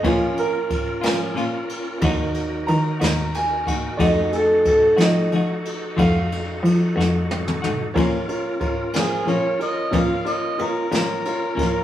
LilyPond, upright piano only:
<<
  \new Staff \with { instrumentName = "Upright piano" } { \time 12/8 \key bes \minor \tempo 4. = 61 des''8 bes'2. r8 bes''4 aes''4 | <d'' ees''>8 <aes' a'>8 a'8 ees''4. f''4 r2 | <f' bes' des''>8 <f' bes' des''>8 <f' bes' des''>8 <f' bes' c''>8 <f' bes' des''>8 <f' bes' des''>8 <f' bes' des''>8 <f' bes' des''>8 <f' bes' des''>8 <f' bes' des''>8 <f' bes' des''>8 <f' bes' des''>8 | }
  \new Staff \with { instrumentName = "Upright piano" } { \time 12/8 \key bes \minor <f bes des'>8 r4 <f bes des'>8 r4 <ges bes ees'>4. r4. | <a ees' ges'>4. <a ees'>8 r1 | r1. | }
>>